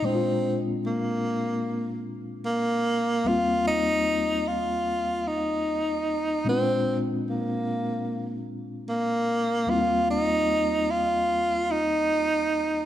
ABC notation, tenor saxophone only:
X:1
M:4/4
L:1/8
Q:"Swing 16ths" 1/4=75
K:Eb
V:1 name="Tenor saxophone"
C z B,3 z B,2 | F E2 F2 E3 | C z B,3 z B,2 | F E2 F2 E3 |]